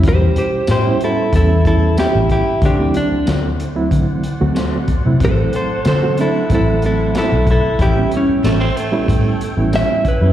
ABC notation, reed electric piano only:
X:1
M:4/4
L:1/16
Q:1/4=93
K:D
V:1 name="Reed electric piano"
[B,,G,CE]3 z2 [G,B,CE] [G,B,CF] z [G,B,CE] z [G,B,CE]4- [G,B,CE] z | z [F,A,=CE]4 z2 [F,A,CE]3 z [F,A,CF]3 z [F,A,CE]- | [F,A,=CE]3 z2 [F,A,CF] [F,A,CD] z [F,A,CE] z [F,A,CE]4- [F,A,CE] z | z [G,B,CE]4 z2 [G,B,CE]3 z [G,B,CE]3 z [G,B,CE] |]